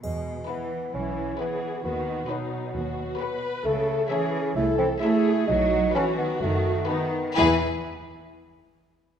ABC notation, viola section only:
X:1
M:4/4
L:1/8
Q:1/4=131
K:E
V:1 name="Viola section"
z4 E2 G2 | F2 D2 F2 B2 | A2 G2 A2 G2 | F2 F4 D z |
E z6 z |]